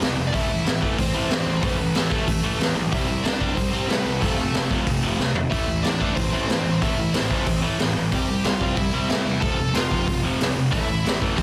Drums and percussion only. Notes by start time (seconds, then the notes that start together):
0.01 snare, open hi-hat
0.34 kick, open hi-hat
0.66 snare, open hi-hat
0.83 kick
0.98 kick, open hi-hat
1.30 snare, open hi-hat
1.62 kick, open hi-hat
1.95 snare, open hi-hat
2.12 kick
2.28 kick, open hi-hat
2.60 snare, open hi-hat
2.92 kick, open hi-hat
3.25 snare, open hi-hat
3.41 kick
3.57 kick, open hi-hat
3.90 snare, open hi-hat
4.22 kick, open hi-hat
4.54 snare, open hi-hat
4.71 kick
4.86 kick, open hi-hat
5.20 snare
5.35 floor tom
5.52 kick, open hi-hat
5.84 snare, open hi-hat
6.01 kick
6.17 kick, open hi-hat
6.49 snare, open hi-hat
6.82 kick, open hi-hat
7.14 snare, open hi-hat
7.31 kick
7.46 kick, open hi-hat
7.79 snare, open hi-hat
8.12 kick, open hi-hat
8.44 snare, open hi-hat
8.61 kick
8.77 kick, open hi-hat
9.09 snare, open hi-hat
9.42 kick, open hi-hat
9.74 snare, open hi-hat
9.91 kick
10.08 kick, open hi-hat
10.41 snare, open hi-hat
10.73 kick, open hi-hat
11.06 snare, open hi-hat
11.22 kick
11.38 kick, open hi-hat